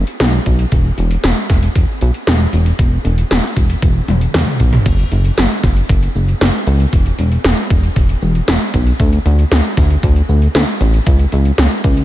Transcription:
0.07 closed hi-hat medium
0.20 0.39 B1 loud
0.20 snare loud
0.20 closed hi-hat medium
0.46 0.65 B1 medium
0.46 kick medium
0.46 closed hi-hat medium
0.59 closed hi-hat medium
0.72 0.91 E1 loud
0.72 kick loud
0.72 closed hi-hat medium
0.98 1.17 E1 medium
0.98 closed hi-hat medium
1.11 closed hi-hat medium
1.24 1.33 E1 medium
1.24 snare loud
1.24 closed hi-hat medium
1.50 1.69 E1 loud
1.50 kick loud
1.50 snare soft
1.50 closed hi-hat medium
1.63 closed hi-hat medium
1.76 1.85 E1 medium
1.76 kick loud
1.76 closed hi-hat medium
2.01 2.11 B1 medium
2.01 closed hi-hat medium
2.14 closed hi-hat medium
2.27 2.46 E1 loud
2.27 snare loud
2.27 closed hi-hat medium
2.53 2.72 E1 medium
2.53 closed hi-hat medium
2.66 closed hi-hat medium
2.79 2.98 E1 loud
2.79 kick loud
2.79 closed hi-hat medium
3.05 3.24 E1 medium
3.05 closed hi-hat medium
3.18 closed hi-hat medium
3.31 3.40 E1 medium
3.31 snare loud
3.31 closed hi-hat loud
3.44 snare soft
3.57 3.75 E1 medium
3.57 kick loud
3.57 closed hi-hat medium
3.70 closed hi-hat medium
3.82 4.01 E1 medium
3.82 kick loud
3.82 closed hi-hat loud
4.08 4.27 E1 medium
4.08 closed hi-hat medium
4.08 high tom medium
4.21 closed hi-hat medium
4.34 4.44 E1 loud
4.34 snare loud
4.34 closed hi-hat loud
4.34 mid tom medium
4.47 mid tom medium
4.60 4.79 B1 loud
4.60 kick medium
4.60 closed hi-hat medium
4.73 closed hi-hat medium
4.73 mid tom medium
4.86 5.05 F#1 loud
4.86 kick loud
4.86 closed hi-hat loud
4.86 crash loud
4.86 cabasa soft
4.99 closed hi-hat soft
4.99 cabasa soft
5.12 5.31 F#1 loud
5.12 closed hi-hat medium
5.12 cabasa medium
5.25 closed hi-hat soft
5.25 cabasa soft
5.38 5.47 F#1 medium
5.38 snare loud
5.38 closed hi-hat loud
5.38 cabasa soft
5.51 closed hi-hat soft
5.51 cabasa soft
5.64 5.82 F#1 loud
5.64 kick loud
5.64 snare soft
5.64 closed hi-hat medium
5.64 cabasa medium
5.77 closed hi-hat soft
5.77 cabasa soft
5.89 6.08 F#1 medium
5.89 kick loud
5.89 closed hi-hat loud
5.89 cabasa soft
6.03 closed hi-hat soft
6.03 cabasa soft
6.15 6.34 F#1 medium
6.15 cabasa medium
6.28 closed hi-hat soft
6.28 cabasa soft
6.41 6.51 F#1 loud
6.41 snare loud
6.41 closed hi-hat loud
6.41 cabasa soft
6.54 closed hi-hat soft
6.54 cabasa soft
6.67 6.86 C#2 loud
6.67 closed hi-hat medium
6.67 cabasa medium
6.80 closed hi-hat soft
6.80 cabasa soft
6.93 7.12 E1 loud
6.93 kick loud
6.93 closed hi-hat loud
6.93 cabasa soft
7.06 closed hi-hat soft
7.06 cabasa soft
7.19 7.37 E1 medium
7.19 closed hi-hat medium
7.19 cabasa medium
7.32 closed hi-hat soft
7.32 cabasa soft
7.44 7.54 E1 medium
7.44 snare loud
7.44 closed hi-hat loud
7.44 cabasa soft
7.57 closed hi-hat soft
7.57 cabasa soft
7.70 7.89 E1 loud
7.70 kick loud
7.70 closed hi-hat medium
7.70 cabasa medium
7.83 closed hi-hat soft
7.83 cabasa soft
7.96 8.15 E1 loud
7.96 kick loud
7.96 closed hi-hat loud
7.96 cabasa soft
8.09 closed hi-hat soft
8.09 cabasa soft
8.22 8.41 E1 medium
8.22 cabasa medium
8.35 closed hi-hat soft
8.35 cabasa soft
8.48 8.57 E1 loud
8.48 snare loud
8.48 closed hi-hat loud
8.48 cabasa soft
8.61 closed hi-hat soft
8.61 cabasa soft
8.74 8.93 B1 loud
8.74 kick medium
8.74 closed hi-hat medium
8.74 cabasa medium
8.87 closed hi-hat soft
8.87 cabasa soft
9.00 9.19 D2 loud
9.00 kick loud
9.00 closed hi-hat loud
9.00 cabasa soft
9.13 closed hi-hat soft
9.13 cabasa soft
9.26 9.44 D2 loud
9.26 closed hi-hat medium
9.26 cabasa medium
9.39 closed hi-hat soft
9.39 cabasa soft
9.52 9.61 D2 medium
9.52 snare loud
9.52 closed hi-hat loud
9.52 cabasa soft
9.64 closed hi-hat soft
9.64 cabasa soft
9.77 9.96 D2 loud
9.77 kick loud
9.77 snare soft
9.77 closed hi-hat medium
9.77 cabasa medium
9.90 closed hi-hat soft
9.90 cabasa soft
10.03 10.22 D2 loud
10.03 kick loud
10.03 closed hi-hat loud
10.03 cabasa soft
10.16 closed hi-hat soft
10.16 cabasa soft
10.29 10.48 D2 medium
10.29 cabasa medium
10.42 closed hi-hat soft
10.42 cabasa soft
10.55 10.64 D2 loud
10.55 snare loud
10.55 closed hi-hat loud
10.55 cabasa soft
10.68 closed hi-hat soft
10.68 cabasa soft
10.81 11.00 A1 loud
10.81 closed hi-hat medium
10.81 cabasa medium
10.94 closed hi-hat soft
10.94 cabasa soft
11.07 11.25 C#2 loud
11.07 kick loud
11.07 closed hi-hat medium
11.07 cabasa soft
11.19 closed hi-hat soft
11.19 cabasa soft
11.32 11.51 C#2 medium
11.32 closed hi-hat medium
11.32 cabasa medium
11.45 closed hi-hat soft
11.45 cabasa soft
11.58 11.68 C#2 medium
11.58 snare loud
11.58 closed hi-hat medium
11.58 cabasa soft
11.71 closed hi-hat soft
11.71 cabasa soft
11.84 12.03 C#2 loud
11.84 kick loud
11.84 closed hi-hat medium
11.84 cabasa medium
11.97 closed hi-hat soft
11.97 cabasa soft

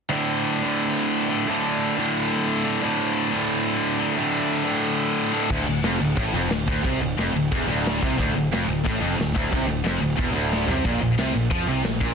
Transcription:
0.09 1.31 D2 medium
0.09 1.28 A2 medium
0.09 1.29 D3 medium
0.62 1.46 D2 medium
0.62 1.46 A2 medium
0.62 1.50 D3 medium
1.29 1.46 D2 medium
1.29 1.46 A2 medium
1.29 1.49 D3 medium
1.46 2.67 D2 medium
1.46 2.64 A2 medium
1.46 2.64 D3 medium
1.97 2.81 D2 medium
1.97 2.81 A2 medium
1.97 2.85 D3 medium
2.64 2.82 D2 medium
2.64 2.81 A2 medium
2.64 2.84 D3 medium
2.82 4.01 D2 medium
2.82 3.99 A2 medium
2.82 3.98 D3 medium
3.31 4.15 D2 medium
3.31 4.16 A2 medium
3.31 4.19 D3 medium
3.99 4.15 D2 medium
3.99 4.16 A2 medium
3.99 4.19 D3 medium
4.16 5.33 D2 medium
4.16 5.33 A2 medium
4.16 5.31 D3 medium
4.64 5.50 D2 medium
4.64 5.50 A2 medium
4.64 5.48 D3 medium
5.32 5.49 D2 medium
5.32 5.50 A2 medium
5.32 5.49 D3 medium
5.50 5.65 D1 medium
5.50 5.64 D2 loud
5.50 kick medium
5.50 crash loud
5.50 crash medium
5.65 5.82 D1 medium
5.65 5.80 D2 medium
5.83 5.99 F1 medium
5.83 6.00 F2 medium
5.83 snare loud
5.83 crash medium
6.00 6.16 D1 medium
6.00 6.14 D2 medium
6.17 6.33 A1 medium
6.17 6.34 A2 loud
6.17 kick loud
6.17 crash medium
6.34 6.49 F1 loud
6.34 6.51 F2 loud
6.50 6.66 D1 medium
6.50 6.65 D2 medium
6.50 snare loud
6.50 crash medium
6.68 6.83 D2 loud
6.68 kick loud
6.84 7.00 C2 medium
6.84 7.00 C3 loud
6.84 kick loud
6.84 crash medium
7.01 7.16 D1 medium
7.01 7.15 D2 medium
7.16 7.33 F1 medium
7.16 7.34 F2 loud
7.16 snare loud
7.16 crash medium
7.33 7.49 D1 medium
7.33 7.48 D2 medium
7.52 7.67 E1 medium
7.52 7.68 E2 medium
7.52 kick loud
7.52 crash medium
7.67 7.99 D1 loud
7.67 8.01 D2 loud
7.86 snare loud
7.86 crash medium
8.03 8.18 C2 medium
8.03 8.18 C3 loud
8.03 kick loud
8.18 8.33 D1 medium
8.18 8.35 D2 loud
8.18 kick loud
8.18 crash medium
8.34 8.50 D1 medium
8.34 8.49 D2 medium
8.51 8.67 F1 medium
8.51 8.68 F2 loud
8.51 snare loud
8.51 crash medium
8.68 8.83 D1 medium
8.68 8.82 D2 medium
8.85 9.01 A1 medium
8.85 9.00 A2 loud
8.85 kick loud
8.85 crash medium
9.01 9.16 F1 loud
9.01 9.17 F2 loud
9.17 9.33 D1 medium
9.17 9.31 D2 medium
9.17 snare loud
9.17 crash medium
9.34 9.51 D1 medium
9.34 9.49 D2 loud
9.34 kick loud
9.49 9.67 C2 medium
9.49 9.67 C3 loud
9.49 kick loud
9.49 crash medium
9.55 9.68 C3 loud
9.67 9.83 D1 medium
9.67 9.81 D2 medium
9.84 10.00 F1 medium
9.84 10.00 F2 loud
9.84 snare loud
9.84 crash medium
10.01 10.16 D1 medium
10.01 10.15 D2 medium
10.17 10.34 E1 medium
10.17 10.33 E2 loud
10.17 kick loud
10.17 crash medium
10.35 10.66 D1 medium
10.35 10.67 D2 loud
10.53 snare medium
10.68 10.83 C2 medium
10.68 10.84 C3 medium
10.68 floor tom medium
10.85 11.00 A#1 medium
10.85 11.01 A#2 loud
10.85 kick loud
10.85 crash medium
11.01 11.17 A#1 medium
11.01 11.15 A#2 medium
11.17 11.33 C2 medium
11.17 11.34 C3 loud
11.17 snare loud
11.17 crash medium
11.34 11.50 A#1 medium
11.34 11.48 A#2 medium
11.50 11.67 F2 medium
11.50 11.67 F3 loud
11.50 kick loud
11.50 crash medium
11.67 11.83 C2 loud
11.67 11.83 C3 loud
11.83 12.00 A#1 medium
11.83 11.97 A#2 medium
11.83 snare loud
11.83 crash medium
12.01 12.14 A#1 medium
12.01 12.14 A#2 loud
12.01 kick loud

